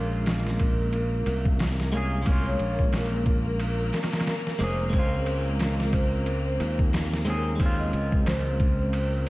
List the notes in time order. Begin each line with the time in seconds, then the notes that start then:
Already playing: A#1 G#3 A#3 C#4 F4
0.26 snare, ride
0.47 snare
0.59 A#4, kick, ride
0.93 ride
1.14 A#4
1.26 C2, ride
1.46 kick
1.59 snare, open hi-hat
1.80 snare
1.92 G#3 A#3 C#4, ride
1.97 G#4
2.22 G#3 A#3, kick, ride
2.29 C#4 F4
2.47 C#5
2.59 A#1, ride
2.79 kick
2.93 A#1 A#4, snare, ride
3.26 kick, ride
3.47 A#4
3.60 ride
3.93 A#4, snare, ride
4.03 snare, ride
4.12 snare, ride
4.19 snare, ride
4.26 A#4, snare, ride
4.47 snare
4.59 F1 G#3 A#3 C#4 C5, ride
4.64 G#4
4.90 C#2 G#3 C4, kick, ride
4.94 C#4 C5
4.99 F4
5.26 ride
5.59 snare, ride
5.80 snare
5.93 C5, kick, ride
6.26 ride
6.45 C5
6.60 D#2, ride
6.79 kick
6.93 snare, open hi-hat
7.14 snare
7.25 G#3 C4 C#4, ride
7.30 G#4
7.56 G#3 C4, kick, ride
7.62 C#4 F4
7.79 D#5
7.93 C#2, ride
8.12 kick
8.26 C#2 C5, snare, ride
8.60 kick, ride
8.80 C5
8.93 ride